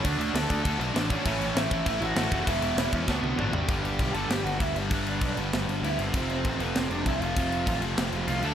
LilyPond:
<<
  \new Staff \with { instrumentName = "Lead electric guitar" } { \time 4/4 \key d \lydian \tempo 4 = 196 <d' d''>4 <a' a''>4. r4 <cis' cis''>8~ | <cis' cis''>4 <e' e''>4 <e' e''>8 <fis' fis''>4. | <e' e''>4. <cis' cis''>8 <b b'>4 <d' d''>8 <g' g''>8~ | \key g \lydian <g' g''>8 <g' g''>4 <a' a''>8 <g' g''>8 <fis' fis''>8 <e' e''>8 <d' d''>8~ |
<d' d''>4. r4. <e' e''>8 <c' c''>8~ | <c' c''>8 <c' c''>4 <b b'>8 <c' c''>8 <d' d''>8 <e' e''>8 <f' f''>8~ | <f' f''>4. r4. <f' f''>8 <a' a''>8 | }
  \new Staff \with { instrumentName = "Overdriven electric guitar" } { \time 4/4 \key d \lydian <d a d' fis'>2~ <d a d' fis'>8 <d a d' fis'>8 <d a d' fis'>4 | <a, e a cis' e'>2~ <a, e a cis' e'>8 <a, e a cis' e'>8 <a, e a cis' e'>4 | <e gis b e'>2 <d a c' fis'>2 | \key g \lydian <g, d g b d'>1 |
<g, d g b d'>1 | <f, c f a c'>1 | <f, c f a c'>2.~ <f, c f a c'>8 <d fis a d'>8 | }
  \new Staff \with { instrumentName = "Distorted electric guitar" } { \clef bass \time 4/4 \key d \lydian <d a d'>4 <d a d'>8 <d a d'>8 <d a d'>4 <d a d'>8 <d a d'>8 | <a, e a>4 <a, e a>8 <a, e a>8 <a, e a>4 <a, e a>8 <a, e a>8 | <e, b, e>4 <e, b, e>8 <e, b, e>8 <d a d'>4 <d a d'>8 <d a d'>8 | \key g \lydian <g, d g>4. <g, d g>2~ <g, d g>8 |
<g, d g>4. <g, d g>2~ <g, d g>8 | <f, c f>4. <f, c f>2~ <f, c f>8 | <f, c f>4. <f, c f>2 <d a d'>8 | }
  \new Staff \with { instrumentName = "Picked electric bass" } { \clef bass \time 4/4 \key d \lydian d,8 d,8 d,8 d,8 d,8 b,,8 a,,4 | a,,8 a,,8 a,,8 a,,8 a,,8 a,,8 a,,8 fis,,8 | e,,8 e,,8 e,,8 e,8 d,8 c,8 a,,4 | \key g \lydian g,,4 b,,8 g,,8 g,,8 g,,8 d,8 g,,8 |
g,,4 b,,8 g,,8 g,,8 g,,8 d,8 g,,8 | f,,4 a,,8 f,,8 f,,8 f,,8 c,8 f,,8 | f,,4 a,,8 f,,8 f,,8 f,,8 c,8 d,8 | }
  \new DrumStaff \with { instrumentName = "Drums" } \drummode { \time 4/4 <cymc bd>8 cymc8 <cymc sn>8 <cymc bd>8 <cymc bd>8 cymc8 <cymc sn>8 <cymc bd>8 | <cymc bd>8 cymc8 <cymc sn>8 <cymc bd>8 <cymc bd>8 cymc8 <cymc sn>8 <cymc bd>8 | <cymc bd>8 cymc8 <cymc sn>8 <cymc bd>8 <bd sn>8 tommh8 toml8 tomfh8 | <cymc bd>8 cymc8 <cymc bd>8 cymc8 <cymc sn>8 cymc8 <cymc bd>8 cymc8 |
<cymc bd>8 cymc8 <cymc bd>8 cymc8 <cymc sn>8 cymc8 cymc8 cymc8 | <cymc bd>8 cymc8 <cymc bd>8 cymc8 <cymc sn>8 cymc8 <cymc bd>8 cymc8 | <cymc bd>8 cymc8 <cymc bd>8 cymc8 <cymc sn>8 cymc8 cymc8 cymc8 | }
>>